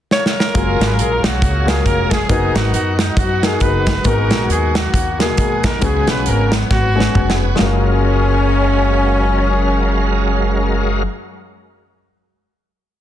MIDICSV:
0, 0, Header, 1, 7, 480
1, 0, Start_track
1, 0, Key_signature, 6, "major"
1, 0, Tempo, 437956
1, 601, Time_signature, 4, 2, 24, 8
1, 4443, Tempo, 442152
1, 14160, End_track
2, 0, Start_track
2, 0, Title_t, "Tonewheel organ"
2, 0, Program_c, 0, 16
2, 602, Note_on_c, 0, 68, 62
2, 607, Note_on_c, 0, 77, 53
2, 608, Note_on_c, 0, 82, 62
2, 613, Note_on_c, 0, 73, 54
2, 2498, Note_off_c, 0, 68, 0
2, 2501, Note_off_c, 0, 77, 0
2, 2501, Note_off_c, 0, 82, 0
2, 2503, Note_off_c, 0, 73, 0
2, 2518, Note_on_c, 0, 75, 55
2, 2519, Note_on_c, 0, 78, 51
2, 2520, Note_on_c, 0, 66, 63
2, 4423, Note_off_c, 0, 75, 0
2, 4451, Note_on_c, 0, 80, 51
2, 6326, Note_off_c, 0, 66, 0
2, 6347, Note_off_c, 0, 80, 0
2, 6361, Note_on_c, 0, 73, 63
2, 6367, Note_on_c, 0, 71, 60
2, 6370, Note_on_c, 0, 80, 53
2, 8246, Note_off_c, 0, 78, 0
2, 8269, Note_off_c, 0, 73, 0
2, 8271, Note_off_c, 0, 71, 0
2, 8273, Note_off_c, 0, 80, 0
2, 8283, Note_on_c, 0, 70, 68
2, 8283, Note_on_c, 0, 77, 47
2, 8284, Note_on_c, 0, 56, 59
2, 8286, Note_on_c, 0, 54, 49
2, 12016, Note_off_c, 0, 70, 0
2, 12016, Note_off_c, 0, 77, 0
2, 12017, Note_off_c, 0, 56, 0
2, 12018, Note_off_c, 0, 54, 0
2, 14160, End_track
3, 0, Start_track
3, 0, Title_t, "Trumpet"
3, 0, Program_c, 1, 56
3, 136, Note_on_c, 1, 73, 97
3, 260, Note_off_c, 1, 73, 0
3, 431, Note_on_c, 1, 70, 101
3, 959, Note_on_c, 1, 71, 69
3, 976, Note_off_c, 1, 70, 0
3, 1031, Note_on_c, 1, 70, 73
3, 1048, Note_off_c, 1, 71, 0
3, 1112, Note_on_c, 1, 68, 74
3, 1128, Note_off_c, 1, 70, 0
3, 1237, Note_on_c, 1, 70, 82
3, 1253, Note_off_c, 1, 68, 0
3, 1367, Note_on_c, 1, 66, 79
3, 1384, Note_off_c, 1, 70, 0
3, 1849, Note_on_c, 1, 68, 85
3, 1866, Note_off_c, 1, 66, 0
3, 2032, Note_off_c, 1, 68, 0
3, 2039, Note_on_c, 1, 70, 94
3, 2312, Note_on_c, 1, 68, 81
3, 2329, Note_off_c, 1, 70, 0
3, 2513, Note_off_c, 1, 68, 0
3, 2519, Note_on_c, 1, 68, 98
3, 2781, Note_off_c, 1, 68, 0
3, 2800, Note_on_c, 1, 66, 85
3, 2983, Note_off_c, 1, 66, 0
3, 3010, Note_on_c, 1, 66, 88
3, 3288, Note_on_c, 1, 63, 70
3, 3304, Note_off_c, 1, 66, 0
3, 3486, Note_on_c, 1, 66, 86
3, 3502, Note_off_c, 1, 63, 0
3, 3766, Note_off_c, 1, 66, 0
3, 3777, Note_on_c, 1, 68, 80
3, 3963, Note_on_c, 1, 71, 87
3, 3979, Note_off_c, 1, 68, 0
3, 4457, Note_on_c, 1, 70, 91
3, 4473, Note_off_c, 1, 71, 0
3, 4929, Note_off_c, 1, 70, 0
3, 4940, Note_on_c, 1, 68, 81
3, 5194, Note_off_c, 1, 68, 0
3, 5214, Note_on_c, 1, 66, 79
3, 5656, Note_off_c, 1, 66, 0
3, 5693, Note_on_c, 1, 68, 96
3, 6183, Note_on_c, 1, 70, 77
3, 6199, Note_off_c, 1, 68, 0
3, 6393, Note_on_c, 1, 68, 92
3, 6409, Note_off_c, 1, 70, 0
3, 6661, Note_off_c, 1, 68, 0
3, 6667, Note_on_c, 1, 71, 74
3, 6861, Note_on_c, 1, 70, 74
3, 6877, Note_off_c, 1, 71, 0
3, 7136, Note_off_c, 1, 70, 0
3, 7331, Note_on_c, 1, 66, 111
3, 8050, Note_off_c, 1, 66, 0
3, 8299, Note_on_c, 1, 61, 76
3, 12032, Note_off_c, 1, 61, 0
3, 14160, End_track
4, 0, Start_track
4, 0, Title_t, "Saxophone section"
4, 0, Program_c, 2, 65
4, 131, Note_on_c, 2, 65, 65
4, 132, Note_on_c, 2, 73, 104
4, 137, Note_on_c, 2, 70, 83
4, 572, Note_off_c, 2, 73, 0
4, 595, Note_off_c, 2, 70, 0
4, 597, Note_off_c, 2, 65, 0
4, 608, Note_on_c, 2, 70, 111
4, 610, Note_on_c, 2, 65, 81
4, 612, Note_on_c, 2, 61, 89
4, 1347, Note_off_c, 2, 61, 0
4, 1354, Note_on_c, 2, 58, 68
4, 1359, Note_on_c, 2, 66, 96
4, 1360, Note_on_c, 2, 61, 69
4, 1365, Note_off_c, 2, 70, 0
4, 1519, Note_off_c, 2, 65, 0
4, 1839, Note_off_c, 2, 66, 0
4, 1846, Note_on_c, 2, 68, 84
4, 2040, Note_off_c, 2, 68, 0
4, 2046, Note_on_c, 2, 70, 96
4, 2272, Note_off_c, 2, 58, 0
4, 2275, Note_off_c, 2, 61, 0
4, 2324, Note_off_c, 2, 70, 0
4, 2325, Note_on_c, 2, 68, 84
4, 2510, Note_off_c, 2, 68, 0
4, 2523, Note_on_c, 2, 59, 76
4, 2523, Note_on_c, 2, 68, 102
4, 2525, Note_on_c, 2, 63, 73
4, 2784, Note_off_c, 2, 68, 0
4, 2804, Note_on_c, 2, 66, 83
4, 2996, Note_off_c, 2, 66, 0
4, 3009, Note_on_c, 2, 66, 75
4, 3267, Note_off_c, 2, 66, 0
4, 3286, Note_off_c, 2, 63, 0
4, 3299, Note_on_c, 2, 63, 72
4, 3437, Note_off_c, 2, 59, 0
4, 3480, Note_off_c, 2, 63, 0
4, 3493, Note_on_c, 2, 63, 54
4, 3496, Note_on_c, 2, 59, 60
4, 3506, Note_on_c, 2, 66, 83
4, 3776, Note_off_c, 2, 66, 0
4, 3786, Note_on_c, 2, 68, 78
4, 3965, Note_off_c, 2, 63, 0
4, 3971, Note_off_c, 2, 68, 0
4, 3978, Note_on_c, 2, 63, 63
4, 3983, Note_on_c, 2, 71, 81
4, 4408, Note_off_c, 2, 59, 0
4, 4418, Note_off_c, 2, 63, 0
4, 4454, Note_off_c, 2, 71, 0
4, 4454, Note_on_c, 2, 70, 93
4, 4455, Note_on_c, 2, 66, 72
4, 4457, Note_on_c, 2, 63, 74
4, 4883, Note_off_c, 2, 70, 0
4, 5203, Note_off_c, 2, 66, 0
4, 5215, Note_on_c, 2, 59, 56
4, 5216, Note_on_c, 2, 66, 85
4, 5218, Note_on_c, 2, 58, 59
4, 5365, Note_off_c, 2, 63, 0
4, 5657, Note_off_c, 2, 66, 0
4, 5696, Note_off_c, 2, 59, 0
4, 5708, Note_on_c, 2, 63, 59
4, 5708, Note_on_c, 2, 68, 85
4, 5709, Note_on_c, 2, 59, 62
4, 6128, Note_off_c, 2, 58, 0
4, 6177, Note_off_c, 2, 68, 0
4, 6191, Note_on_c, 2, 70, 96
4, 6330, Note_off_c, 2, 63, 0
4, 6331, Note_off_c, 2, 59, 0
4, 6368, Note_on_c, 2, 59, 81
4, 6375, Note_off_c, 2, 70, 0
4, 6376, Note_on_c, 2, 68, 109
4, 6649, Note_on_c, 2, 71, 94
4, 6653, Note_off_c, 2, 68, 0
4, 6845, Note_off_c, 2, 71, 0
4, 6851, Note_on_c, 2, 70, 93
4, 7131, Note_off_c, 2, 70, 0
4, 7146, Note_on_c, 2, 71, 89
4, 7284, Note_off_c, 2, 59, 0
4, 7328, Note_on_c, 2, 59, 61
4, 7334, Note_off_c, 2, 71, 0
4, 7337, Note_on_c, 2, 66, 81
4, 8053, Note_off_c, 2, 66, 0
4, 8246, Note_off_c, 2, 59, 0
4, 8284, Note_on_c, 2, 61, 103
4, 12017, Note_off_c, 2, 61, 0
4, 14160, End_track
5, 0, Start_track
5, 0, Title_t, "Grand piano"
5, 0, Program_c, 3, 0
5, 589, Note_on_c, 3, 56, 68
5, 597, Note_on_c, 3, 65, 69
5, 600, Note_on_c, 3, 54, 68
5, 607, Note_on_c, 3, 70, 77
5, 1315, Note_off_c, 3, 56, 0
5, 1319, Note_off_c, 3, 65, 0
5, 1320, Note_off_c, 3, 54, 0
5, 1324, Note_off_c, 3, 70, 0
5, 1821, Note_on_c, 3, 56, 61
5, 1827, Note_on_c, 3, 65, 60
5, 1837, Note_on_c, 3, 66, 65
5, 1840, Note_on_c, 3, 70, 83
5, 2338, Note_off_c, 3, 56, 0
5, 2341, Note_off_c, 3, 65, 0
5, 2346, Note_off_c, 3, 66, 0
5, 2347, Note_off_c, 3, 70, 0
5, 2503, Note_on_c, 3, 70, 73
5, 2509, Note_on_c, 3, 63, 66
5, 2513, Note_on_c, 3, 66, 63
5, 2525, Note_on_c, 3, 71, 76
5, 3232, Note_off_c, 3, 70, 0
5, 3236, Note_off_c, 3, 63, 0
5, 3237, Note_off_c, 3, 66, 0
5, 3243, Note_off_c, 3, 71, 0
5, 3759, Note_on_c, 3, 70, 70
5, 3762, Note_on_c, 3, 63, 66
5, 3768, Note_on_c, 3, 66, 64
5, 3777, Note_on_c, 3, 68, 75
5, 4271, Note_off_c, 3, 70, 0
5, 4272, Note_off_c, 3, 63, 0
5, 4275, Note_off_c, 3, 66, 0
5, 4280, Note_off_c, 3, 68, 0
5, 4430, Note_on_c, 3, 56, 77
5, 4440, Note_on_c, 3, 44, 69
5, 4442, Note_on_c, 3, 59, 66
5, 4447, Note_on_c, 3, 66, 70
5, 4455, Note_on_c, 3, 70, 82
5, 5157, Note_off_c, 3, 56, 0
5, 5160, Note_off_c, 3, 44, 0
5, 5163, Note_off_c, 3, 59, 0
5, 5165, Note_off_c, 3, 66, 0
5, 5169, Note_off_c, 3, 70, 0
5, 5677, Note_on_c, 3, 56, 70
5, 5685, Note_on_c, 3, 58, 51
5, 5691, Note_on_c, 3, 66, 61
5, 5693, Note_on_c, 3, 70, 81
5, 5732, Note_off_c, 3, 58, 0
5, 5743, Note_on_c, 3, 47, 63
5, 6189, Note_off_c, 3, 56, 0
5, 6196, Note_off_c, 3, 66, 0
5, 6197, Note_off_c, 3, 70, 0
5, 6222, Note_off_c, 3, 47, 0
5, 6348, Note_on_c, 3, 56, 77
5, 6357, Note_on_c, 3, 49, 59
5, 6357, Note_on_c, 3, 61, 62
5, 6359, Note_on_c, 3, 66, 68
5, 6366, Note_on_c, 3, 71, 74
5, 7079, Note_off_c, 3, 56, 0
5, 7082, Note_off_c, 3, 49, 0
5, 7083, Note_off_c, 3, 61, 0
5, 7085, Note_off_c, 3, 66, 0
5, 7088, Note_off_c, 3, 71, 0
5, 7590, Note_on_c, 3, 56, 68
5, 7601, Note_on_c, 3, 61, 63
5, 7608, Note_on_c, 3, 66, 69
5, 7613, Note_on_c, 3, 71, 72
5, 8109, Note_off_c, 3, 56, 0
5, 8115, Note_off_c, 3, 61, 0
5, 8118, Note_off_c, 3, 66, 0
5, 8120, Note_off_c, 3, 71, 0
5, 8242, Note_on_c, 3, 56, 81
5, 8270, Note_on_c, 3, 65, 73
5, 8280, Note_on_c, 3, 42, 75
5, 8299, Note_on_c, 3, 66, 75
5, 8317, Note_on_c, 3, 70, 85
5, 11975, Note_off_c, 3, 56, 0
5, 12003, Note_off_c, 3, 65, 0
5, 12013, Note_off_c, 3, 42, 0
5, 12032, Note_off_c, 3, 66, 0
5, 12049, Note_off_c, 3, 70, 0
5, 14160, End_track
6, 0, Start_track
6, 0, Title_t, "Upright bass"
6, 0, Program_c, 4, 32
6, 605, Note_on_c, 4, 30, 96
6, 843, Note_off_c, 4, 30, 0
6, 876, Note_on_c, 4, 32, 83
6, 1046, Note_off_c, 4, 32, 0
6, 1075, Note_on_c, 4, 34, 85
6, 1317, Note_off_c, 4, 34, 0
6, 1354, Note_on_c, 4, 35, 76
6, 1554, Note_off_c, 4, 35, 0
6, 1554, Note_on_c, 4, 37, 87
6, 1963, Note_off_c, 4, 37, 0
6, 2033, Note_on_c, 4, 29, 76
6, 2442, Note_off_c, 4, 29, 0
6, 2513, Note_on_c, 4, 30, 92
6, 2755, Note_off_c, 4, 30, 0
6, 2797, Note_on_c, 4, 32, 91
6, 2966, Note_off_c, 4, 32, 0
6, 2988, Note_on_c, 4, 42, 79
6, 3401, Note_off_c, 4, 42, 0
6, 3471, Note_on_c, 4, 42, 87
6, 3884, Note_off_c, 4, 42, 0
6, 3954, Note_on_c, 4, 30, 76
6, 4367, Note_off_c, 4, 30, 0
6, 4438, Note_on_c, 4, 32, 98
6, 4721, Note_off_c, 4, 32, 0
6, 4721, Note_on_c, 4, 34, 87
6, 4889, Note_off_c, 4, 34, 0
6, 4917, Note_on_c, 4, 39, 98
6, 5326, Note_off_c, 4, 39, 0
6, 5400, Note_on_c, 4, 39, 86
6, 5809, Note_off_c, 4, 39, 0
6, 5884, Note_on_c, 4, 39, 81
6, 6292, Note_off_c, 4, 39, 0
6, 6363, Note_on_c, 4, 37, 85
6, 6604, Note_off_c, 4, 37, 0
6, 6639, Note_on_c, 4, 35, 84
6, 6810, Note_off_c, 4, 35, 0
6, 6847, Note_on_c, 4, 32, 80
6, 7255, Note_off_c, 4, 32, 0
6, 7321, Note_on_c, 4, 32, 81
6, 7732, Note_off_c, 4, 32, 0
6, 7806, Note_on_c, 4, 29, 83
6, 8215, Note_off_c, 4, 29, 0
6, 8292, Note_on_c, 4, 30, 87
6, 12024, Note_off_c, 4, 30, 0
6, 14160, End_track
7, 0, Start_track
7, 0, Title_t, "Drums"
7, 123, Note_on_c, 9, 38, 53
7, 233, Note_off_c, 9, 38, 0
7, 284, Note_on_c, 9, 38, 69
7, 393, Note_off_c, 9, 38, 0
7, 441, Note_on_c, 9, 38, 82
7, 551, Note_off_c, 9, 38, 0
7, 601, Note_on_c, 9, 42, 83
7, 603, Note_on_c, 9, 36, 122
7, 710, Note_off_c, 9, 42, 0
7, 713, Note_off_c, 9, 36, 0
7, 890, Note_on_c, 9, 42, 60
7, 894, Note_on_c, 9, 38, 100
7, 1000, Note_off_c, 9, 42, 0
7, 1003, Note_off_c, 9, 38, 0
7, 1084, Note_on_c, 9, 42, 83
7, 1193, Note_off_c, 9, 42, 0
7, 1359, Note_on_c, 9, 38, 105
7, 1369, Note_on_c, 9, 42, 65
7, 1469, Note_off_c, 9, 38, 0
7, 1479, Note_off_c, 9, 42, 0
7, 1557, Note_on_c, 9, 36, 91
7, 1564, Note_on_c, 9, 42, 68
7, 1666, Note_off_c, 9, 36, 0
7, 1673, Note_off_c, 9, 42, 0
7, 1844, Note_on_c, 9, 38, 104
7, 1844, Note_on_c, 9, 42, 72
7, 1953, Note_off_c, 9, 38, 0
7, 1954, Note_off_c, 9, 42, 0
7, 2035, Note_on_c, 9, 42, 65
7, 2036, Note_on_c, 9, 36, 71
7, 2144, Note_off_c, 9, 42, 0
7, 2145, Note_off_c, 9, 36, 0
7, 2312, Note_on_c, 9, 42, 60
7, 2317, Note_on_c, 9, 36, 81
7, 2322, Note_on_c, 9, 38, 106
7, 2422, Note_off_c, 9, 42, 0
7, 2426, Note_off_c, 9, 36, 0
7, 2431, Note_off_c, 9, 38, 0
7, 2515, Note_on_c, 9, 36, 113
7, 2515, Note_on_c, 9, 42, 82
7, 2625, Note_off_c, 9, 36, 0
7, 2625, Note_off_c, 9, 42, 0
7, 2799, Note_on_c, 9, 42, 60
7, 2803, Note_on_c, 9, 38, 101
7, 2909, Note_off_c, 9, 42, 0
7, 2912, Note_off_c, 9, 38, 0
7, 3001, Note_on_c, 9, 42, 80
7, 3111, Note_off_c, 9, 42, 0
7, 3275, Note_on_c, 9, 38, 93
7, 3284, Note_on_c, 9, 42, 68
7, 3384, Note_off_c, 9, 38, 0
7, 3394, Note_off_c, 9, 42, 0
7, 3472, Note_on_c, 9, 36, 92
7, 3480, Note_on_c, 9, 42, 70
7, 3581, Note_off_c, 9, 36, 0
7, 3590, Note_off_c, 9, 42, 0
7, 3761, Note_on_c, 9, 38, 98
7, 3761, Note_on_c, 9, 42, 78
7, 3870, Note_off_c, 9, 38, 0
7, 3871, Note_off_c, 9, 42, 0
7, 3948, Note_on_c, 9, 42, 69
7, 3958, Note_on_c, 9, 36, 68
7, 4058, Note_off_c, 9, 42, 0
7, 4067, Note_off_c, 9, 36, 0
7, 4236, Note_on_c, 9, 42, 62
7, 4239, Note_on_c, 9, 36, 82
7, 4246, Note_on_c, 9, 38, 106
7, 4346, Note_off_c, 9, 42, 0
7, 4349, Note_off_c, 9, 36, 0
7, 4356, Note_off_c, 9, 38, 0
7, 4432, Note_on_c, 9, 42, 86
7, 4439, Note_on_c, 9, 36, 113
7, 4540, Note_off_c, 9, 42, 0
7, 4548, Note_off_c, 9, 36, 0
7, 4716, Note_on_c, 9, 42, 54
7, 4720, Note_on_c, 9, 38, 106
7, 4825, Note_off_c, 9, 42, 0
7, 4828, Note_off_c, 9, 38, 0
7, 4927, Note_on_c, 9, 42, 82
7, 5035, Note_off_c, 9, 42, 0
7, 5201, Note_on_c, 9, 38, 103
7, 5210, Note_on_c, 9, 42, 62
7, 5309, Note_off_c, 9, 38, 0
7, 5319, Note_off_c, 9, 42, 0
7, 5402, Note_on_c, 9, 36, 83
7, 5415, Note_on_c, 9, 42, 76
7, 5510, Note_off_c, 9, 36, 0
7, 5524, Note_off_c, 9, 42, 0
7, 5689, Note_on_c, 9, 38, 107
7, 5689, Note_on_c, 9, 42, 77
7, 5798, Note_off_c, 9, 38, 0
7, 5798, Note_off_c, 9, 42, 0
7, 5877, Note_on_c, 9, 42, 71
7, 5884, Note_on_c, 9, 36, 76
7, 5985, Note_off_c, 9, 42, 0
7, 5992, Note_off_c, 9, 36, 0
7, 6160, Note_on_c, 9, 42, 66
7, 6165, Note_on_c, 9, 36, 84
7, 6170, Note_on_c, 9, 38, 103
7, 6269, Note_off_c, 9, 42, 0
7, 6273, Note_off_c, 9, 36, 0
7, 6278, Note_off_c, 9, 38, 0
7, 6354, Note_on_c, 9, 42, 84
7, 6363, Note_on_c, 9, 36, 104
7, 6463, Note_off_c, 9, 42, 0
7, 6471, Note_off_c, 9, 36, 0
7, 6635, Note_on_c, 9, 42, 57
7, 6638, Note_on_c, 9, 38, 100
7, 6743, Note_off_c, 9, 42, 0
7, 6747, Note_off_c, 9, 38, 0
7, 6835, Note_on_c, 9, 42, 75
7, 6944, Note_off_c, 9, 42, 0
7, 7118, Note_on_c, 9, 38, 103
7, 7127, Note_on_c, 9, 42, 65
7, 7226, Note_off_c, 9, 38, 0
7, 7236, Note_off_c, 9, 42, 0
7, 7323, Note_on_c, 9, 36, 95
7, 7324, Note_on_c, 9, 38, 45
7, 7432, Note_off_c, 9, 36, 0
7, 7432, Note_off_c, 9, 38, 0
7, 7646, Note_on_c, 9, 38, 75
7, 7755, Note_off_c, 9, 38, 0
7, 7807, Note_on_c, 9, 36, 72
7, 7808, Note_on_c, 9, 45, 60
7, 7916, Note_off_c, 9, 36, 0
7, 7916, Note_off_c, 9, 45, 0
7, 7964, Note_on_c, 9, 38, 86
7, 8072, Note_off_c, 9, 38, 0
7, 8282, Note_on_c, 9, 38, 96
7, 8391, Note_off_c, 9, 38, 0
7, 14160, End_track
0, 0, End_of_file